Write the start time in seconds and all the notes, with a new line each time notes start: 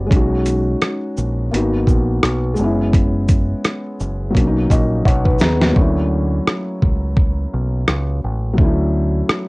Already playing: G3 B3 C#4 F#4
0.06 G#3 C#4
0.11 B1 D#4, kick, closed hi-hat
0.16 F#4
0.46 closed hi-hat, shaker
0.82 cross-stick, closed hi-hat
1.17 A#1, shaker
1.51 G#1 A#3 B3 D#4, closed hi-hat
1.56 F#4
1.87 A#1, kick, shaker
2.23 B1, cross-stick, closed hi-hat
2.54 G#3 B3, shaker
2.59 F#1 C#4
2.64 E4
2.93 kick, closed hi-hat
3.29 kick, closed hi-hat, shaker
3.64 cross-stick, closed hi-hat
4.00 F#1, shaker
4.30 F#3 A#3
4.35 B1 C#4, kick, closed hi-hat
4.40 D4
4.47 D#4
4.70 A#1 D#5, kick, closed hi-hat, shaker
5.05 B1 C#5 F#5, kick, closed hi-hat
5.25 D#4 B4, kick
5.39 D#2 B3 G#4 A#5, snare, shaker
5.61 A#3 F#4, snare
5.72 F#3 A3
5.76 D2 C#4, kick
5.81 E4
6.47 cross-stick
6.82 C#2, kick
7.17 kick
7.54 B1
7.88 C#2, cross-stick
8.24 A1
8.53 F#3 A3
8.58 D2 C#4, kick
8.63 E4
9.29 cross-stick